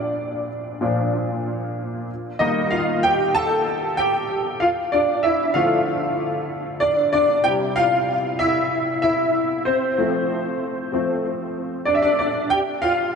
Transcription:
grand piano
Already playing: A#2 F3 D4 F4 D5 F5
0.81 A#2 F3 D4
2.39 D#3 G3 A#3 D#4 D#5
2.71 F4 F5
3.03 G4 G5
3.35 A4 A5
3.97 G4 G5
4.60 F4 F5
4.92 D4 D5
5.23 E4 E5
5.54 D3 F3 A3 F4 F5
6.80 D4 D5
7.13 D4 D5
7.44 C3 G3 E4 G4 G5
7.76 F4 F5
8.39 E4 E5
9.02 E4 E5
9.65 C4 C5
9.98 F3 A3 C4
10.92 F3 A3 C4
11.85 D4 D5
11.95 E5
12.02 D4 D5
12.19 D4 D5
12.50 G4 G5
12.82 F4 F5

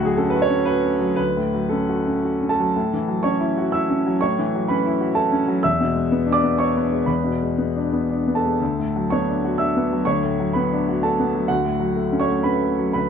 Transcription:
grand piano
Already playing: D2 A2 F#4
0.03 F#3 G#4
0.17 C#4 A4
0.30 B4
0.36 F#4
0.42 C#5
0.50 C#4
0.65 F#4 B4
0.83 C#4
1.00 F#3
1.16 D2 B4
1.37 A2
1.54 F#3
1.69 C#4 A4
1.89 F#4
2.07 C#4
2.25 F#4
2.42 C#4
2.49 A4 A5
2.59 F#3
2.76 A2
2.94 E3
3.08 F#3
3.23 C#4 C#5 C#6
3.40 E4
3.57 F#4
3.72 E4 E5 E6
3.90 C#4
4.06 F#3
4.21 A2 C#5 C#6
4.39 E3
4.55 F#3
4.68 C#4 B4 B5
4.86 E4
5.01 F#4
5.15 E4 A4 A5
5.32 C#4
5.48 F#3
5.63 E2 E5 E6
5.81 B2
5.96 G#3
6.12 B3
6.26 D4
6.33 D5 D6
6.44 B3
6.58 D4 C#5 C#6
6.77 B3
6.92 G#3
7.06 E2 B4 B5
7.24 B2
7.42 G#3
7.58 B3
7.76 D4
7.93 B3
8.10 D4
8.28 B3
8.35 A4 A5
8.45 G#3
8.61 D2
8.79 A2
8.96 F#3
9.10 B3 C#5 C#6
9.28 D4
9.44 F#4
9.58 D4 E5 E6
9.77 B3
9.93 F#3
10.05 D2 C#5 C#6
10.24 A2
10.40 F#3
10.53 B3 B4 B5
10.72 D4
10.89 F#4
11.03 D4 A4 A5
11.19 B3
11.35 F#3
11.48 D2 F#4 F#5
11.65 A2
11.80 F#3
11.97 A3
12.12 C#4
12.20 C#5 C#6
12.29 A3
12.43 C#4 B4 B5
12.62 A3
12.79 F#3
12.93 D2 B4 B5

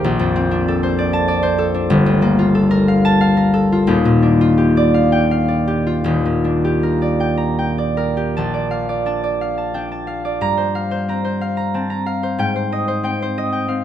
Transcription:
harp
Already playing: C4 A#4 C5 A#5
0.04 A#1
0.19 F2
0.36 C4
0.51 D4
0.68 A4
0.83 C5
0.99 D5
1.13 A5
1.28 D5
1.43 C5
1.58 A4
1.74 D4
1.90 G1
2.06 D2
2.22 A#3
2.39 F4
2.55 A4
2.71 A#4
2.88 F5
3.05 A5
3.21 F5
3.37 A#4
3.54 A4
3.72 F4
3.87 D#1 D#2
4.05 A#2
4.22 D4
4.41 F4
4.58 G4
4.77 D5
4.94 F5
5.12 G5
5.31 F5
5.48 D5
5.67 G4
5.87 F4
6.04 D#1 D#2
6.26 A#2
6.44 D4
6.65 G4
6.83 A#4
7.02 D5
7.20 G5
7.37 A#5
7.59 G5
7.78 D5
7.97 A#4
8.17 G4
8.37 A#1 A5
8.54 D5
8.71 F5
8.89 D5
9.06 D4 A5
9.24 D5
9.41 F5
9.58 A5
9.74 D4 G5
9.92 A5
10.07 F5
10.25 D5
10.41 G2 A#5
10.57 C5
10.75 F5
10.91 C5
11.08 C4 A#5
11.25 C5
11.41 F5
11.57 A#5
11.74 C4 A5
11.90 A#5
12.06 F5
12.23 C5
12.38 G#2 G5
12.56 C5
12.72 D#5
12.88 C5
13.03 C4 G5
13.22 C5
13.38 D#5
13.53 G5
13.68 C4 F5

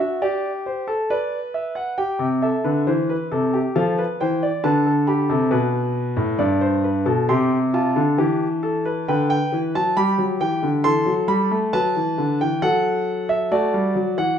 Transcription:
grand piano
0.00 F#4 E5
0.22 G4 D5
0.66 C5
0.87 A4
1.10 B4 D5
1.54 E5
1.75 F#5
1.98 G4 G5
2.19 C3
2.42 A4 E5
2.64 D3 B4
2.87 E3 C5
3.10 B4
3.31 C3 A4
3.54 G4
3.75 F3 A4 F5
3.98 B4
4.21 E3 C5 G5
4.43 D5
4.64 D3 B4 A5
4.86 A4
5.07 G4 B5
5.29 C3 A4
5.51 B2 B4
6.17 A2
6.39 G2 D5
6.61 C5
6.84 B4
7.06 B2 A4
7.29 C3 G4 C6
7.74 F4 A5
7.96 D3
8.18 E3 G4
8.63 A4
8.85 B4
9.08 D3 B4 G5
9.30 G5
9.52 E3
9.75 F#3 A5
9.97 G3 G4 B5
10.18 F#3
10.41 E3 G5
10.63 D3
10.84 E3 A4 C6
11.06 F#3
11.28 G3 B5
11.51 A3
11.73 F#3 B4 A5
11.96 E3
12.18 D3
12.41 E3 G5
12.62 F#3 A4 F#5
13.29 E5
13.51 A3 F#4 D5
13.74 G3
13.95 F#3
14.18 E3 F#5

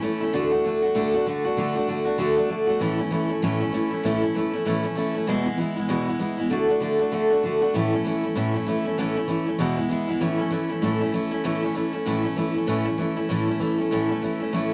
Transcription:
steel-string acoustic guitar
0.01 E3 A3 C#4 E4
0.21 A3 C#4 E4
0.33 D3 A3 D4 F#4
0.51 A3 D4 F#4
0.64 D3 A3 D4 F#4
0.82 A3 D4 F#4
0.95 D3 A3 D4 F#4
1.14 A3 D4 F#4
1.26 D3 A3 D4 F#4
1.44 A3 D4 F#4
1.57 D3 A3 D4 F#4
1.75 A3 D4 F#4
1.88 D3 A3 D4 F#4
2.05 A3 D4 F#4
2.18 D3 A3 D4 F#4
2.36 A3 D4 F#4
2.49 D3 A3 D4 F#4
2.67 A3 D4 F#4
2.80 A2 E3 A3 C#4 E4
2.98 A3 C#4 E4
3.11 E3 A3 C#4 E4
3.29 A3 C#4 E4
3.42 A2 E3 A3 C#4 E4
3.60 A3 C#4 E4
3.73 E3 A3 C#4 E4
3.91 A3 C#4 E4
4.04 A2 E3 A3 C#4 E4
4.22 A3 C#4 E4
4.35 E3 A3 C#4 E4
4.53 A3 C#4 E4
4.65 A2 E3 A3 C#4 E4
4.83 A3 C#4 E4
4.95 E3 A3 C#4 E4
5.14 A3 C#4 E4
5.27 E2 B2 E3 G#3 B3 E4
5.46 E3 G#3 B3 E4
5.58 E3 G#3 B3 E4
5.76 E3 G#3 B3 E4
5.88 E2 B2 E3 G#3 B3 E4
6.06 E3 G#3 B3 E4
6.19 E3 G#3 B3 E4
6.37 E3 G#3 B3 E4
6.50 D3 A3 D4 F#4
6.68 A3 D4 F#4
6.80 D3 A3 D4 F#4
6.99 A3 D4 F#4
7.12 D3 A3 D4 F#4
7.30 A3 D4 F#4
7.43 D3 A3 D4 F#4
7.61 A3 D4 F#4
7.74 A2 E3 A3 C#4 E4
7.92 A3 C#4 E4
8.04 E3 A3 C#4 E4
8.23 A3 C#4 E4
8.35 A2 E3 A3 C#4 E4
8.54 A3 C#4 E4
8.66 E3 A3 C#4 E4
8.85 A3 C#4 E4
8.98 A2 E3 A3 C#4 E4
9.16 A3 C#4 E4
9.28 E3 A3 C#4 E4
9.46 A3 C#4 E4
9.59 E2 B2 E3 G#3 B3 E4
9.76 E3 G#3 B3 E4
9.89 E3 G#3 B3 E4
10.08 E3 G#3 B3 E4
10.20 A2 E3 A3 C#4 E4
10.38 A3 C#4 E4
10.51 E3 A3 C#4 E4
10.69 A3 C#4 E4
10.82 A2 E3 A3 C#4 E4
11.00 A3 C#4 E4
11.12 E3 A3 C#4 E4
11.31 A3 C#4 E4
11.44 A2 E3 A3 C#4 E4
11.62 A3 C#4 E4
11.74 E3 A3 C#4 E4
11.93 A3 C#4 E4
12.05 A2 E3 A3 C#4 E4
12.23 A3 C#4 E4
12.36 E3 A3 C#4 E4
12.54 A3 C#4 E4
12.67 A2 E3 A3 C#4 E4
12.85 A3 C#4 E4
12.98 E3 A3 C#4 E4
13.17 A3 C#4 E4
13.29 A2 E3 A3 C#4 E4
13.48 A3 C#4 E4
13.60 E3 A3 C#4 E4
13.78 A3 C#4 E4
13.91 A2 E3 A3 C#4 E4
14.09 A3 C#4 E4
14.22 E3 A3 C#4 E4
14.40 A3 C#4 E4
14.53 A2 E3 A3 C#4 E4

